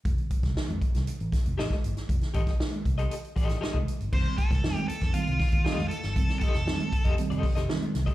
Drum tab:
CC |----------------|----------------|x---------------|----------------|
HH |xxxx-xxxxxxx-xxx|xxxx-xxxxxxx--xx|--xx-xxxxxox--xx|xxxx-xxxxxox-xxx|
SD |---oo--o--o-oo-o|-o-oo------oo---|---oo--o--o-oo-o|-o-oo------oo-o-|
BD |o-oo--o---o--o--|o-oo--o---o--o--|o-oo---o--oo----|o-o---oo--o----o|